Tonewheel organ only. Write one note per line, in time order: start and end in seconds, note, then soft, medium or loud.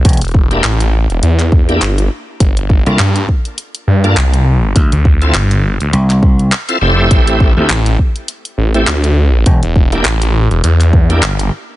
0.51 0.64 A#3 medium
0.51 0.64 D4 medium
0.51 0.64 E4 medium
0.51 0.64 G4 loud
1.69 1.82 A#3 medium
1.69 1.82 D4 medium
1.69 1.82 E4 medium
1.69 1.82 G4 loud
2.86 3.00 A#3 medium
2.86 3.00 D4 medium
2.86 3.00 F4 medium
2.86 3.00 A4 loud
4.04 4.17 A#3 medium
4.04 4.17 D4 medium
4.04 4.17 F4 medium
4.04 4.17 A4 loud
5.22 5.35 C4 medium
5.22 5.35 E4 medium
5.22 5.35 F4 medium
5.22 5.35 A4 loud
6.69 6.78 C4 medium
6.69 6.78 E4 medium
6.69 6.78 F4 medium
6.69 6.78 A4 medium
6.81 7.53 A3 medium
6.81 7.53 C4 medium
6.81 7.53 E4 medium
6.81 7.53 G4 medium
7.57 7.70 A3 medium
7.57 7.70 C4 medium
7.57 7.70 E4 medium
7.57 7.70 G4 loud
8.74 8.88 A3 medium
8.74 8.88 C4 medium
8.74 8.88 E4 medium
8.74 8.88 G4 loud
9.92 10.06 A#3 medium
9.92 10.06 D4 medium
9.92 10.06 E4 medium
9.92 10.06 G4 loud
11.10 11.23 A#3 medium
11.10 11.23 D4 medium
11.10 11.23 E4 medium
11.10 11.23 G4 loud